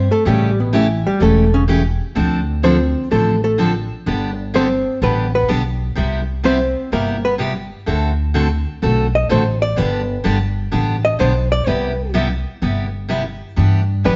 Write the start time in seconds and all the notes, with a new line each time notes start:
Already playing: C4 C5
0.11 A3 A4
0.25 A1 C#3 E3 G3 A3 C#4 G4
0.60 B2 B3
0.73 C#3 E3 A3 C#4 E4 G4
1.07 G3 G4
1.20 E1 C#3 E3 A3 C#4 G4 A4
1.54 C#3 C#4
1.68 C#3 E3 A3 C#4 G4
2.15 D2 D3 F3 C4 D4 A4
2.63 D3 F3 C4 D4 A4 C5
3.11 A1 D3 F3 A3 C4 D4 A4
3.44 A3 A4
3.58 D3 F3 C4 D4 A4
4.06 G1 D3 G3 B3 D4 G4
4.54 D3 G3 B3 C4 D4 G4 C5
5.02 A1 D3 G3 B3 D4 G4 B4
5.35 B3 B4
5.48 B1 D3 G3 B3 D4 G4
5.96 C2 C3 G3 B3 E4 G4
6.44 C3 G3 B3 C4 E4 G4 C5
6.92 G1 C3 G3 A#3 B3 E4 G4 A#4
7.25 B3 B4
7.38 C3 G3 B3 E4 G4
7.86 D2 D3 A3 C4 F#4 A4
8.34 D3 A3 C4 F#4 A4
8.82 B1 D3 A3 C4 F#4 A4
9.15 D#5
9.29 A1 D3 A3 C4 F#4 A4 C5
9.62 D5
9.76 G1 D3 G3 B3 D4 G4 B4
10.24 G1 D3 G3 B3 D4 G4
10.72 A1 D3 G3 B3 D4 G4
11.05 D#5
11.19 B1 D3 G3 B3 D4 G4 C5
11.52 D5
11.67 C2 C3 G3 B3 E4 G4 B4
12.14 C3 G3 B3 E4 G4
12.62 G1 C3 G3 B3 E4 G4
13.09 C3 G3 B3 E4 G4
13.56 G2 E3 B3 D4 G4
14.04 F2 E3 B3 D4 G4 B4